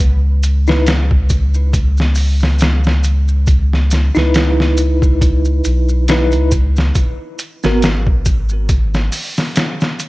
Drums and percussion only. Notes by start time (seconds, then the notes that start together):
0.00 maracas
0.43 closed hi-hat, maracas
0.67 snare, maracas
0.86 snare, closed hi-hat, maracas
1.11 kick
1.30 kick, closed hi-hat, maracas
1.54 maracas
1.73 kick, closed hi-hat, maracas
1.97 snare, maracas
2.15 open hi-hat, maracas
2.40 snare, maracas
2.59 snare, closed hi-hat, maracas
2.84 snare, maracas
3.04 closed hi-hat, maracas
3.28 maracas
3.47 kick, closed hi-hat, maracas
3.73 snare
3.91 snare, closed hi-hat, maracas
4.15 snare, maracas
4.34 snare, closed hi-hat, maracas
4.60 snare
4.77 closed hi-hat, maracas
5.02 kick, maracas
5.21 kick, closed hi-hat, maracas
5.45 maracas
5.65 closed hi-hat, maracas
5.89 maracas
6.08 snare, closed hi-hat, maracas
6.31 closed hi-hat, maracas
6.52 kick, closed hi-hat, maracas
6.76 snare, maracas
6.95 kick, closed hi-hat, maracas
7.39 closed hi-hat, maracas
7.64 snare, maracas
7.82 snare, closed hi-hat, maracas
8.07 kick
8.26 kick, closed hi-hat, maracas
8.49 maracas
8.69 kick, closed hi-hat, maracas
8.94 snare, maracas
9.12 open hi-hat, maracas
9.37 snare, maracas
9.56 snare, closed hi-hat, maracas
9.81 snare, maracas
10.00 closed hi-hat, maracas